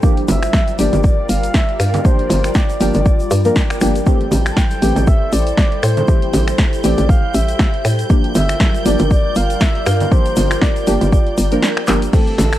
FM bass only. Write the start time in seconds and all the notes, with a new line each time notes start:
0.28 G1
0.79 G1
0.93 G1
1.29 G1
1.80 G2
2.30 G1
2.81 G1
2.95 G1
3.31 G2
3.81 G1
4.32 A1
4.82 A1
4.96 A1
5.33 A1
5.83 A2
6.34 A1
6.84 A1
6.98 A1
7.34 A1
7.85 A2
8.35 G1
8.86 G1
9.00 G1
9.36 G1
9.87 G2
10.37 G1
10.87 G1
11.01 G1
11.38 G1
11.88 G1
12.38 A1